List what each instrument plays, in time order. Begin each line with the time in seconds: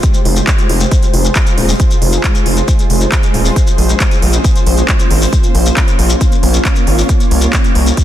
0.03 kick, closed hi-hat, shekere
0.14 closed hi-hat, shekere
0.25 analog synth bass F1, open hi-hat
0.36 closed hi-hat, shekere
0.47 kick, clap, closed hi-hat, shekere
0.58 closed hi-hat, shekere
0.69 analog synth bass F1, open hi-hat
0.80 closed hi-hat, shekere
0.91 kick, closed hi-hat, shekere
1.03 closed hi-hat, shekere
1.14 analog synth bass F1, open hi-hat
1.25 closed hi-hat, shekere
1.35 kick, clap, closed hi-hat, shekere
1.47 closed hi-hat, shekere
1.58 analog synth bass D#1, open hi-hat
1.69 shekere
1.80 kick, closed hi-hat, shekere
1.91 closed hi-hat, shekere
2.02 analog synth bass F1, open hi-hat
2.13 closed hi-hat, shekere
2.24 kick, clap, closed hi-hat, shekere
2.35 closed hi-hat, shekere
2.46 analog synth bass F1, open hi-hat
2.57 closed hi-hat, shekere
2.68 kick, closed hi-hat, shekere
2.79 closed hi-hat, shekere
2.90 analog synth bass F1, open hi-hat
3.01 closed hi-hat, shekere
3.12 kick, clap, closed hi-hat, shekere
3.23 closed hi-hat, shekere
3.34 analog synth bass D#1, open hi-hat
3.45 shekere
3.56 kick, closed hi-hat, shekere
3.67 closed hi-hat, shekere
3.78 analog synth bass A#1, open hi-hat
3.89 closed hi-hat, shekere
4.00 kick, clap, closed hi-hat, shekere
4.11 closed hi-hat, shekere
4.22 analog synth bass A#1, open hi-hat
4.33 closed hi-hat, shekere
4.44 kick, closed hi-hat, shekere
4.55 closed hi-hat, shekere
4.66 analog synth bass A#1, open hi-hat
4.77 closed hi-hat, shekere
4.88 kick, clap, closed hi-hat, shekere
4.99 closed hi-hat, shekere
5.11 analog synth bass G#1, open hi-hat
5.22 shekere
5.33 kick, closed hi-hat, shekere
5.43 closed hi-hat, shekere
5.55 analog synth bass A#1, open hi-hat
5.66 closed hi-hat, shekere
5.77 kick, clap, closed hi-hat, shekere
5.88 closed hi-hat, shekere
5.99 analog synth bass A#1, open hi-hat
6.10 closed hi-hat, shekere
6.21 kick, closed hi-hat, shekere
6.32 closed hi-hat, shekere
6.43 analog synth bass A#1, open hi-hat
6.54 closed hi-hat, shekere
6.65 kick, clap, closed hi-hat, shekere
6.75 closed hi-hat, shekere
6.87 analog synth bass G#1, open hi-hat
6.99 shekere
7.09 kick, closed hi-hat, shekere
7.20 closed hi-hat, shekere
7.31 analog synth bass C2, open hi-hat
7.41 closed hi-hat, shekere
7.53 kick, clap, closed hi-hat, shekere
7.64 closed hi-hat, shekere
7.75 analog synth bass C2, open hi-hat
7.86 closed hi-hat, shekere
7.97 kick, closed hi-hat, shekere